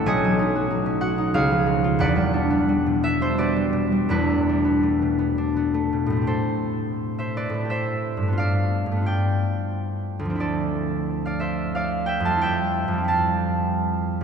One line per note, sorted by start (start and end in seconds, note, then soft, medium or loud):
0.00 1.36 B3 medium
0.00 0.85 C#4 medium
0.00 1.37 B4 medium
0.06 1.36 B1 medium
0.06 1.34 C#5 loud
0.06 2.02 D#5 medium
0.06 1.69 G#5 loud
0.25 1.37 F#3 medium
0.39 0.69 D#4 medium
0.56 1.01 F#4 medium
0.71 1.17 D#4 medium
0.86 2.01 C#4 medium
1.01 1.36 F#4 medium
1.01 1.36 F#5 loud
1.18 1.65 D#4 medium
1.34 2.01 C#2 medium
1.34 2.02 G#4 medium
1.34 2.02 C#5 medium
1.34 2.01 F5 loud
1.51 2.02 F3 medium
1.66 2.01 D#4 medium
1.84 2.02 F4 medium
1.99 4.08 E1 medium
1.99 4.09 E2 medium
1.99 3.38 B4 medium
1.99 3.37 D5 medium
1.99 4.13 F#5 loud
2.16 2.68 G3 medium
2.34 3.20 D4 medium
2.50 3.02 B3 medium
2.69 3.55 G3 medium
2.86 3.72 B2 medium
3.03 3.37 B3 medium
3.03 6.94 E5 loud
3.21 4.10 D4 medium
3.21 3.49 C5 medium
3.38 4.64 B3 medium
3.38 4.14 G4 medium
3.38 4.09 B4 medium
3.38 6.31 D5 loud
3.57 3.91 G3 medium
3.73 4.13 B2 medium
3.92 4.13 G3 medium
4.09 6.30 E1 medium
4.09 6.30 E2 medium
4.09 4.48 D4 medium
4.09 8.01 E4 medium
4.09 6.31 B4 medium
4.30 4.82 A3 medium
4.49 5.37 D4 medium
4.65 5.17 B3 medium
4.83 5.73 A3 medium
5.02 5.92 B2 medium
5.19 5.55 B3 medium
5.38 6.30 D4 medium
5.57 6.30 B3 medium
5.74 6.09 A3 medium
5.93 6.31 B2 soft
6.06 7.48 A2 medium
6.06 6.12 A3 medium
6.12 7.53 A3 soft
6.17 7.59 C4 soft
6.22 7.64 G4 soft
6.27 10.18 A4 medium
6.27 7.18 C5 medium
7.19 7.70 C5 medium
7.19 7.47 E5 medium
7.37 10.44 B4 medium
7.37 7.95 D5 medium
7.50 8.31 A2 medium
7.54 8.21 A3 soft
7.60 8.36 C4 soft
7.65 10.41 G4 soft
7.70 8.41 C5 medium
7.70 8.41 E5 medium
8.17 8.85 G2 medium
8.22 8.90 A3 soft
8.28 8.95 B3 soft
8.33 9.01 F4 soft
8.38 9.07 D5 medium
8.38 11.24 F5 medium
8.86 10.33 G2 soft
8.92 12.82 A3 soft
8.96 10.38 B3 soft
9.02 12.92 F4 soft
9.06 10.39 D5 medium
9.06 10.43 G5 medium
10.19 12.32 D2 medium
10.25 14.15 F3 soft
10.30 12.30 C4 soft
10.35 12.35 E4 soft
10.40 14.24 A4 medium
10.40 11.25 D5 medium
11.26 11.75 D5 medium
11.26 11.52 F5 medium
11.40 14.24 C5 medium
11.40 12.07 E5 medium
11.75 12.44 D5 medium
11.75 12.25 F5 medium
12.06 12.41 E5 medium
12.06 12.34 G5 medium
12.20 12.87 F2 medium
12.25 12.92 G3 soft
12.25 13.08 F5 medium
12.25 12.52 A5 medium
12.31 12.97 C4 soft
12.36 13.03 E4 soft
12.41 14.24 E5 medium
12.41 14.24 G5 loud
12.88 14.24 F2 medium
12.93 14.24 G3 soft
12.98 14.24 C4 soft
13.04 14.24 E4 soft
13.04 14.24 A5 medium
13.10 14.24 F5 medium
14.21 14.24 G2 medium